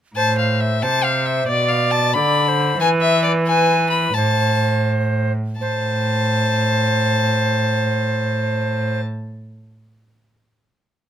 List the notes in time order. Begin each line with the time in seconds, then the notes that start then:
0.16 A2 C5 A5
0.39 F5
0.60 E5
0.82 C3 C5 A5
1.04 F5
1.26 E5
1.48 B2 D5
1.69 F5
1.91 A5
2.14 D3 D5 B5
2.48 C5
2.80 E3 B4 G#5
3.02 E5
3.24 D5
3.47 B4 G#5
3.90 B5
4.14 A2 C5 A5
5.59 A2 C5 A5